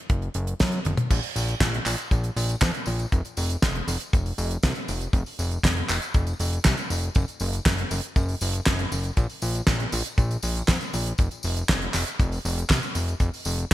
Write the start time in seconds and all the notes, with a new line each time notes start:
0.10 F#1, kick, closed hi-hat
0.22 closed hi-hat
0.34 F#1, closed hi-hat
0.47 closed hi-hat
0.60 F#2, kick, snare, closed hi-hat
0.72 closed hi-hat
0.85 F#1, closed hi-hat, high tom
0.97 closed hi-hat, mid tom
1.10 A#1, kick, closed hi-hat, crash, tambourine
1.23 open hi-hat, tambourine
1.36 A#1, open hi-hat, tambourine
1.48 closed hi-hat, tambourine
1.60 A#1, kick, snare, clap, closed hi-hat, tambourine
1.74 closed hi-hat
1.86 A#1, clap, open hi-hat, tambourine
1.98 closed hi-hat, tambourine
2.11 A#1, kick, closed hi-hat, tambourine
2.24 closed hi-hat, tambourine
2.36 A#1, open hi-hat, tambourine
2.49 closed hi-hat, tambourine
2.61 F2, kick, snare, clap, closed hi-hat, tambourine
2.74 closed hi-hat, tambourine
2.86 A#1, open hi-hat, tambourine
2.99 closed hi-hat, tambourine
3.12 F1, kick, closed hi-hat, tambourine
3.25 closed hi-hat, tambourine
3.37 F1, open hi-hat, tambourine
3.50 closed hi-hat, tambourine
3.62 F1, kick, snare, clap, closed hi-hat, tambourine
3.75 closed hi-hat
3.88 F1, open hi-hat, tambourine
4.00 closed hi-hat, tambourine
4.13 F1, kick, closed hi-hat, tambourine
4.26 open hi-hat, tambourine
4.38 F1, open hi-hat, tambourine
4.51 closed hi-hat, tambourine
4.63 C2, kick, snare, clap, closed hi-hat, tambourine
4.75 closed hi-hat, tambourine
4.88 F1, open hi-hat, tambourine
5.01 closed hi-hat, tambourine
5.13 F1, kick, closed hi-hat, tambourine
5.26 open hi-hat, tambourine
5.39 F1, open hi-hat, tambourine
5.51 closed hi-hat, tambourine
5.63 F1, kick, snare, clap, closed hi-hat, tambourine
5.77 closed hi-hat
5.89 F1, clap, open hi-hat, tambourine
6.02 closed hi-hat, tambourine
6.14 F1, kick, closed hi-hat, tambourine
6.27 closed hi-hat, tambourine
6.39 F1, open hi-hat, tambourine
6.53 closed hi-hat, tambourine
6.65 C2, kick, snare, clap, closed hi-hat, tambourine
6.77 closed hi-hat, tambourine
6.90 F1, open hi-hat, tambourine
7.03 closed hi-hat, tambourine
7.15 F#1, kick, closed hi-hat, tambourine
7.28 closed hi-hat, tambourine
7.40 F#1, open hi-hat, tambourine
7.53 closed hi-hat, tambourine
7.66 F#1, kick, snare, clap, closed hi-hat, tambourine
7.78 closed hi-hat
7.91 F#1, open hi-hat, tambourine
8.03 closed hi-hat, tambourine
8.16 F#1, kick, closed hi-hat, tambourine
8.28 open hi-hat, tambourine
8.41 F#1, open hi-hat, tambourine
8.53 closed hi-hat, tambourine
8.66 F#1, kick, snare, clap, closed hi-hat, tambourine
8.79 closed hi-hat, tambourine
8.92 F#1, open hi-hat, tambourine
9.03 closed hi-hat, tambourine
9.17 A#1, kick, closed hi-hat, tambourine
9.30 open hi-hat, tambourine
9.42 A#1, open hi-hat, tambourine
9.55 closed hi-hat, tambourine
9.67 A#1, kick, snare, clap, closed hi-hat, tambourine
9.80 closed hi-hat
9.92 A#1, open hi-hat, tambourine
10.05 closed hi-hat, tambourine
10.18 A#1, kick, closed hi-hat, tambourine
10.31 closed hi-hat, tambourine
10.42 A#1, open hi-hat, tambourine
10.55 closed hi-hat, tambourine
10.68 F2, kick, snare, clap, closed hi-hat, tambourine
10.80 closed hi-hat, tambourine
10.93 A#1, open hi-hat, tambourine
11.06 closed hi-hat, tambourine
11.18 F1, kick, closed hi-hat, tambourine
11.31 closed hi-hat, tambourine
11.43 F1, open hi-hat, tambourine
11.57 closed hi-hat, tambourine
11.69 F1, kick, snare, clap, closed hi-hat, tambourine
11.81 closed hi-hat
11.94 F1, snare, clap, open hi-hat, tambourine
12.07 closed hi-hat, tambourine
12.20 F1, kick, closed hi-hat, tambourine
12.32 open hi-hat, tambourine
12.45 F1, open hi-hat, tambourine
12.58 closed hi-hat, tambourine
12.69 C2, kick, snare, clap, closed hi-hat, tambourine
12.83 closed hi-hat, tambourine
12.95 F1, open hi-hat, tambourine
13.08 closed hi-hat, tambourine
13.20 F1, kick, closed hi-hat, tambourine
13.34 open hi-hat, tambourine
13.45 F1, open hi-hat, tambourine
13.58 closed hi-hat, tambourine
13.71 tambourine